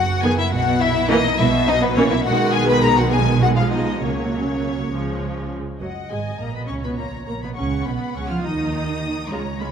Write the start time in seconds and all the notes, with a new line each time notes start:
Already playing: F#1 F#2 F#4 F#5
0.22 D#3 B3 G#4 G#5
0.38 E4 E5
0.51 B1 B2 F#4 F#5
0.80 E4 E5
1.09 E3 A#3 D#4 D#5
1.39 B1 B2 E4 E5
1.68 D#4 D#5
1.82 B3 B4
1.97 E3 A#3 C#4 C#5
2.11 E4 E5
2.25 B1 B2 D#3 G#3 F#4 F#5
2.53 G#4 G#5
2.68 B4 B5
2.83 A#4 A#5
2.97 F#4 F#5
3.12 D#3 G#3 G#4 G#5
3.41 F#4 F#5
3.56 F3 F4 F5
3.71 D#4 D#5
4.00 C#2 C#3 F#3 A#3 C#4 C#5
4.92 C#2 C#3 F3 G#3
5.80 F#1 F#2 F#3 D#5 F#5
6.11 G#1 G#2 G#3 G#5
6.40 A#1 A#2 A#3 A#5
6.55 B2 B3 B5
6.68 C#2 C#3 C#4 C#5 C#6
6.84 B2 B3 B5
6.97 A#1 A#2 A#3 A#5
7.27 A#1 A#2 A#3 A#5
7.43 B2 B3 B5
7.56 C#2 C#3 C#4 F#5 C#6
7.86 B1 B2 B3 B5
8.15 C#2 C#3 C#4 C#6
8.29 F3 F4 F6
8.43 D#2 D#3 D#4 D#5 D#6
9.30 C#2 G#3 F4 C#5 A#5
9.60 G#3 F4 B5